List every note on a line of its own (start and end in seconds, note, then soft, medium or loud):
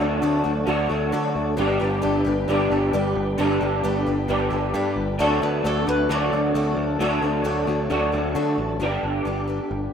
0.00 0.21 D2 medium
0.00 0.65 D3 medium
0.00 0.66 F#3 medium
0.00 0.67 A3 medium
0.00 1.55 A3 medium
0.00 0.68 D4 loud
0.00 1.55 D4 medium
0.00 0.22 D4 soft
0.00 0.68 F#4 loud
0.00 1.54 F#4 medium
0.00 0.22 F#4 medium
0.00 0.22 A4 medium
0.00 1.54 A4 medium
0.21 0.43 D2 medium
0.21 0.45 D3 medium
0.21 0.45 A3 medium
0.21 0.45 D4 medium
0.21 0.49 F#4 medium
0.21 0.44 F#4 medium
0.21 0.50 A4 medium
0.21 0.43 A4 loud
0.21 0.50 D5 medium
0.44 0.66 D2 medium
0.44 0.66 D4 soft
0.44 0.67 F#4 medium
0.44 0.67 A4 medium
0.66 0.88 D2 medium
0.66 1.56 D3 medium
0.66 1.56 F#3 medium
0.66 0.90 A3 medium
0.66 0.90 D4 medium
0.66 0.94 F#4 medium
0.66 0.90 F#4 medium
0.66 0.95 A4 medium
0.66 0.88 A4 medium
0.66 0.95 D5 medium
0.89 1.11 D2 medium
0.89 1.12 D4 soft
0.89 1.12 F#4 medium
0.89 1.12 A4 medium
1.12 1.58 D3 medium
1.12 1.33 D3 medium
1.12 1.56 A3 medium
1.12 1.57 D4 medium
1.12 1.40 F#4 medium
1.12 1.58 F#4 medium
1.12 1.41 A4 medium
1.12 1.58 A4 loud
1.12 1.34 D5 medium
1.12 1.34 F#5 medium
1.35 1.56 D2 medium
1.35 1.57 D5 medium
1.56 1.79 G1 loud
1.56 2.47 G2 medium
1.56 2.47 D3 loud
1.56 1.80 G3 medium
1.56 5.16 B3 medium
1.56 2.50 B3 medium
1.56 1.80 D4 medium
1.56 5.16 D4 medium
1.56 1.85 G4 medium
1.56 1.80 G4 medium
1.56 5.16 G4 medium
1.56 1.85 B4 medium
1.56 1.78 B4 medium
1.56 5.16 B4 medium
1.56 1.86 D5 medium
1.80 2.02 G1 medium
1.80 2.01 D4 medium
1.80 2.02 G4 medium
1.80 2.02 B4 medium
2.02 2.24 G1 medium
2.02 2.25 G3 medium
2.02 2.25 D4 medium
2.02 2.31 G4 medium
2.02 2.25 G4 medium
2.02 2.31 B4 medium
2.02 2.24 B4 medium
2.02 2.32 D5 medium
2.25 2.47 G1 loud
2.25 2.47 D4 medium
2.25 2.48 G4 medium
2.25 2.48 B4 medium
2.48 2.69 G1 medium
2.48 3.36 G2 medium
2.48 3.37 D3 medium
2.48 2.71 G3 medium
2.48 3.38 B3 medium
2.48 2.71 D4 medium
2.48 2.76 G4 medium
2.48 2.71 G4 medium
2.48 2.76 B4 medium
2.48 2.70 B4 medium
2.48 2.77 D5 medium
2.70 2.91 G1 medium
2.70 2.93 D4 soft
2.70 2.93 G4 soft
2.70 2.94 B4 medium
2.93 3.14 G1 medium
2.93 3.37 G3 medium
2.93 3.38 D4 medium
2.93 3.21 G4 medium
2.93 3.38 G4 medium
2.93 3.22 B4 medium
2.93 3.38 B4 loud
2.93 3.22 D5 medium
3.15 3.36 G1 loud
3.38 3.59 G1 medium
3.38 4.26 G2 medium
3.38 4.27 D3 medium
3.38 3.61 G3 medium
3.38 4.28 B3 medium
3.38 3.61 D4 medium
3.38 3.67 G4 medium
3.38 3.61 G4 loud
3.38 3.67 B4 medium
3.38 3.59 B4 loud
3.38 3.67 D5 medium
3.61 3.82 G1 medium
3.61 3.83 D4 medium
3.61 3.84 G4 medium
3.61 3.84 B4 medium
3.84 4.05 G1 medium
3.84 4.06 G3 medium
3.84 4.07 D4 medium
3.84 4.12 G4 medium
3.84 4.06 G4 loud
3.84 4.12 B4 medium
3.84 4.05 B4 medium
3.84 4.12 D5 medium
4.06 4.27 G1 medium
4.06 4.28 D4 soft
4.06 4.29 G4 medium
4.06 4.29 B4 medium
4.28 4.49 G1 medium
4.28 5.17 G2 medium
4.28 5.17 D3 medium
4.28 4.51 G3 medium
4.28 5.18 B3 medium
4.28 4.51 D4 medium
4.28 4.57 G4 medium
4.28 4.50 G4 medium
4.28 4.57 B4 medium
4.28 4.49 B4 medium
4.28 4.58 D5 loud
4.50 4.72 G1 medium
4.50 4.73 D4 soft
4.50 4.74 G4 soft
4.50 4.73 B4 medium
4.73 4.94 G2 medium
4.73 5.19 G3 medium
4.73 5.20 D4 medium
4.73 5.01 G4 medium
4.73 5.20 G4 loud
4.73 5.02 B4 medium
4.73 5.20 B4 medium
4.73 5.03 D5 medium
4.96 5.17 G1 medium
5.18 5.40 D2 loud
5.18 5.42 D3 medium
5.18 6.10 F#3 medium
5.18 5.42 A3 medium
5.18 8.77 A3 medium
5.18 5.42 D4 medium
5.18 8.77 D4 medium
5.18 5.47 F#4 medium
5.18 8.77 F#4 medium
5.18 5.42 F#4 medium
5.18 5.47 A4 medium
5.18 5.41 A4 loud
5.18 8.77 A4 medium
5.18 5.42 A4 medium
5.18 5.47 D5 medium
5.42 5.62 D2 medium
5.42 5.65 D4 soft
5.42 5.65 F#4 medium
5.42 5.64 A4 medium
5.42 5.64 B4 medium
5.64 5.85 D2 medium
5.64 5.87 D3 medium
5.64 5.87 A3 medium
5.64 5.88 D4 medium
5.64 5.92 F#4 medium
5.64 5.87 F#4 medium
5.64 5.92 A4 medium
5.64 5.86 A4 medium
5.64 5.87 A4 medium
5.64 5.93 D5 loud
5.87 6.07 D2 medium
5.87 6.09 D4 soft
5.87 6.10 F#4 medium
5.87 6.09 A4 medium
5.87 6.10 B4 medium
6.09 6.30 D2 loud
6.09 6.98 D3 medium
6.09 6.99 F#3 medium
6.09 6.32 A3 medium
6.09 6.32 D4 medium
6.09 6.38 F#4 medium
6.09 6.96 F#4 medium
6.09 6.32 F#4 medium
6.09 6.38 A4 medium
6.09 6.31 A4 medium
6.09 6.98 D5 loud
6.09 6.38 D5 loud
6.32 6.53 D2 medium
6.32 6.55 D4 soft
6.32 6.55 F#4 medium
6.32 6.55 A4 medium
6.54 6.75 D2 loud
6.54 6.99 D3 medium
6.54 6.99 A3 medium
6.54 7.01 D4 medium
6.54 6.83 F#4 medium
6.54 7.00 F#4 medium
6.54 6.83 A4 medium
6.54 7.00 A4 medium
6.54 6.83 D5 medium
6.77 6.97 D2 medium
6.99 7.20 D2 loud
6.99 7.22 D3 medium
6.99 7.89 F#3 loud
6.99 7.23 A3 medium
6.99 7.23 D4 medium
6.99 7.28 F#4 medium
6.99 7.22 F#4 loud
6.99 7.28 A4 medium
6.99 7.21 A4 loud
6.99 7.29 D5 medium
7.22 7.42 D2 medium
7.22 7.44 D4 medium
7.22 7.44 F#4 medium
7.22 7.45 A4 medium
7.44 7.65 D2 medium
7.44 7.67 D3 medium
7.44 7.67 A3 medium
7.44 7.67 D4 medium
7.44 7.67 F#4 medium
7.44 7.73 F#4 medium
7.44 7.66 A4 medium
7.44 7.73 A4 medium
7.44 7.74 D5 medium
7.67 7.88 D2 medium
7.67 7.89 D4 medium
7.67 7.90 F#4 medium
7.67 7.90 A4 medium
7.90 8.11 D2 loud
7.90 8.79 D3 medium
7.90 8.79 F#3 medium
7.90 8.12 A3 medium
7.90 8.13 D4 medium
7.90 8.18 F#4 medium
7.90 8.12 F#4 medium
7.90 8.18 A4 medium
7.90 8.11 A4 medium
7.90 8.18 D5 medium
8.12 8.34 D2 medium
8.12 8.35 D4 soft
8.12 8.35 F#4 soft
8.12 8.35 A4 medium
8.35 8.80 D3 medium
8.35 8.56 D3 medium
8.35 8.79 A3 medium
8.35 8.79 D4 medium
8.35 8.63 F#4 medium
8.35 8.81 F#4 medium
8.35 8.63 A4 medium
8.35 8.81 A4 medium
8.35 8.64 D5 medium
8.58 8.78 A1 medium
8.80 8.97 G1 medium
8.80 9.92 G2 medium
8.80 9.92 D3 medium
8.80 9.24 G3 medium
8.80 9.93 B3 medium
8.80 9.25 D4 medium
8.80 9.26 G4 medium
8.80 9.26 B4 medium
9.03 9.20 G1 medium
9.25 9.59 G1 medium
9.25 9.48 G3 medium
9.25 9.48 D4 medium
9.25 9.48 G4 medium
9.25 9.46 B4 medium
9.47 9.93 D4 soft
9.47 9.93 G4 medium
9.47 9.92 B4 medium
9.71 9.87 G1 medium